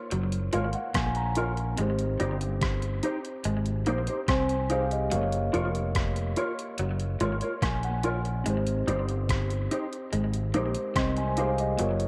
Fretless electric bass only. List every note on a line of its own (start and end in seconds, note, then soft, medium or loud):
0.12 0.51 F#1 medium
0.54 0.74 G#1 medium
0.95 1.74 A#1 medium
1.79 2.18 G#1 medium
2.21 3.00 G1 medium
3.45 3.84 G#1 medium
3.88 4.07 A#1 medium
4.28 5.08 C2 medium
5.13 5.51 F#1 loud
5.54 6.33 F1 medium
6.79 7.18 F#1 medium
7.21 7.41 G#1 medium
7.63 8.42 A#1 loud
8.46 8.85 G#1 medium
8.87 9.67 G1 medium
10.13 10.52 G#1 loud
10.55 10.75 A#1 medium
10.96 11.75 C2 medium
11.80 12.08 F#1 medium